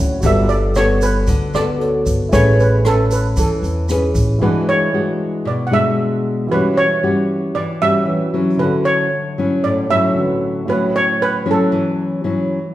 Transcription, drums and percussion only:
0.22 kick, closed hi-hat, shaker
0.49 closed hi-hat, shaker
0.75 cross-stick, closed hi-hat, shaker
1.02 closed hi-hat, shaker
1.27 kick, closed hi-hat, shaker
1.54 cross-stick, closed hi-hat, shaker
1.81 closed hi-hat
2.06 kick, closed hi-hat, shaker
2.33 kick, cross-stick, closed hi-hat, shaker
2.59 closed hi-hat, shaker
2.85 cross-stick, closed hi-hat
3.11 closed hi-hat, shaker
3.37 kick, closed hi-hat, shaker
3.63 closed hi-hat, shaker
3.89 cross-stick, closed hi-hat, shaker
4.15 kick, closed hi-hat, shaker

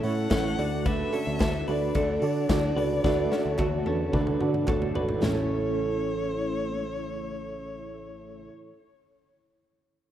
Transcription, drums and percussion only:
0.03 open hi-hat
0.31 kick, snare, clap, hi-hat pedal, ride
0.59 open hi-hat
0.85 kick, hi-hat pedal, ride
1.13 clap, open hi-hat
1.40 kick, snare, clap, hi-hat pedal, ride
1.67 open hi-hat
1.95 kick, hi-hat pedal, ride
2.22 open hi-hat
2.49 kick, snare, clap, hi-hat pedal, ride
2.78 open hi-hat
3.04 kick, snare
3.32 snare, clap
3.58 kick, clap, high tom
3.86 high tom
4.13 kick, mid tom
4.27 mid tom
4.41 mid tom
4.54 mid tom
4.67 kick, clap, mid tom
4.82 floor tom
4.95 floor tom
5.09 floor tom
5.22 snare, clap, floor tom

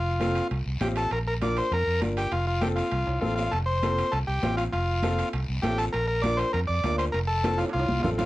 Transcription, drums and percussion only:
0.21 high conga, high timbale, short guiro
0.35 high timbale, short guiro
0.51 high conga, high timbale, long guiro
0.81 high conga, high timbale, low timbale, short guiro
0.96 high timbale, short guiro
1.11 high conga, high timbale, long guiro
1.41 high conga, high timbale, short guiro
1.57 high timbale, short guiro
1.72 high conga, high timbale, long guiro
2.01 high conga, high timbale, short guiro
2.17 high timbale, short guiro
2.32 high conga, high timbale, long guiro
2.62 high conga, high timbale, short guiro
2.77 high timbale, short guiro
2.91 high conga, high timbale, long guiro
3.07 high timbale
3.22 high conga, short guiro
3.37 low timbale, short guiro
3.52 high conga, high timbale, long guiro
3.82 high conga, high timbale, short guiro
3.98 high timbale, short guiro
4.13 high conga, high timbale, long guiro
4.43 high conga, high timbale, low timbale, short guiro
4.58 high timbale, short guiro
4.73 high conga, high timbale, long guiro
5.03 high conga, high timbale, short guiro
5.19 high timbale, short guiro
5.33 high conga, high timbale, long guiro
5.63 high conga, high timbale, low timbale, short guiro
5.79 high timbale, short guiro
5.94 high conga, high timbale, long guiro
6.23 high conga, high timbale, short guiro
6.39 high timbale, short guiro
6.54 high conga, high timbale, long guiro
6.84 high conga, high timbale, low timbale, short guiro
6.99 high timbale, short guiro
7.14 high conga, high timbale, long guiro
7.44 high conga, high timbale, short guiro
7.59 high timbale, short guiro
7.69 high timbale
7.74 high conga, long guiro
7.79 high timbale
7.89 high conga
8.00 low timbale
8.04 low conga, short guiro
8.19 low conga, low timbale, short guiro

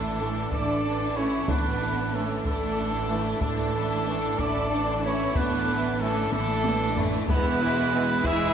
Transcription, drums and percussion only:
0.52 taiko
1.49 taiko
2.45 taiko
3.41 taiko
4.39 taiko
5.35 taiko
6.32 taiko high
6.64 taiko high
6.97 taiko low
7.28 taiko
8.24 taiko

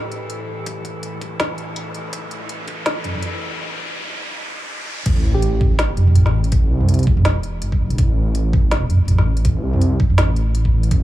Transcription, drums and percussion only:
0.12 closed hi-hat
0.30 closed hi-hat
0.66 kick, closed hi-hat
0.85 kick, closed hi-hat
1.03 closed hi-hat
1.21 kick, closed hi-hat
1.40 snare, closed hi-hat
1.58 closed hi-hat
1.76 closed hi-hat
1.95 closed hi-hat
2.13 kick, closed hi-hat
2.31 closed hi-hat
2.49 closed hi-hat
2.68 kick, closed hi-hat
2.86 snare, closed hi-hat
3.04 closed hi-hat, mid tom
3.15 mid tom
3.23 closed hi-hat
5.06 kick, closed hi-hat, crash
5.42 closed hi-hat
5.61 kick
5.79 snare, closed hi-hat
5.97 closed hi-hat, mid tom
6.07 mid tom
6.15 closed hi-hat
6.26 snare
6.44 closed hi-hat
6.52 kick, closed hi-hat
6.81 mid tom
6.89 closed hi-hat
6.94 closed hi-hat
6.99 closed hi-hat
7.03 closed hi-hat
7.07 kick
7.17 mid tom
7.25 snare, closed hi-hat
7.43 closed hi-hat
7.62 closed hi-hat
7.72 kick
7.90 closed hi-hat
7.98 kick, closed hi-hat
8.35 closed hi-hat
8.53 kick
8.71 snare, closed hi-hat
8.90 closed hi-hat, mid tom
9.00 mid tom
9.05 closed hi-hat, mid tom
9.11 mid tom
9.18 snare
9.37 closed hi-hat
9.45 kick, closed hi-hat
9.73 mid tom
9.82 closed hi-hat
10.00 kick
10.10 mid tom
10.18 snare, closed hi-hat
10.36 closed hi-hat
10.55 closed hi-hat
10.65 kick
10.83 closed hi-hat
10.91 kick, closed hi-hat

